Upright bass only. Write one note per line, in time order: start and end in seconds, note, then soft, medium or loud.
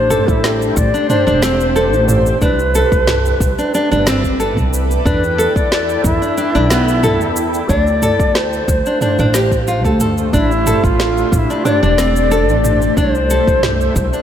0.00 0.18 A1 medium
0.28 0.67 A1 medium
0.77 0.88 A1 loud
1.27 1.93 E1 medium
1.93 2.32 A1 medium
2.42 2.81 C2 loud
2.92 3.31 C2 medium
3.41 3.51 C2 loud
3.92 4.57 G1 medium
4.57 4.96 C2 medium
5.06 5.45 E2 loud
5.56 5.95 E2 medium
6.05 6.15 E2 loud
6.55 7.21 B1 loud
7.21 7.60 E2 medium
7.69 8.09 D2 loud
8.20 8.59 D2 medium
8.68 8.79 D2 loud
9.19 9.85 A1 loud
9.85 10.24 D2 medium
10.33 10.73 A1 medium
10.84 11.22 A1 medium
11.32 11.43 A1 loud
11.83 12.49 E1 medium
12.49 12.87 A1 medium
12.97 13.36 C2 loud
13.48 13.86 C2 medium
13.96 14.06 C2 loud